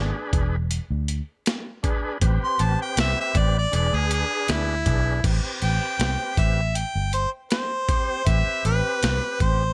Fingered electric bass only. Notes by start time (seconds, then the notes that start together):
Already playing: G#1
0.33 E1
0.90 D2
2.22 A1
2.42 muted fingered electric bass stroke
2.60 A1
2.97 C2
3.35 A1
3.73 E1
3.93 D2
4.49 D2
4.86 B1
5.24 A1
5.44 muted fingered electric bass stroke
5.62 A1
5.99 C2
6.37 A1
6.95 G1
8.27 A1
8.65 A1
9.03 C2
9.41 A1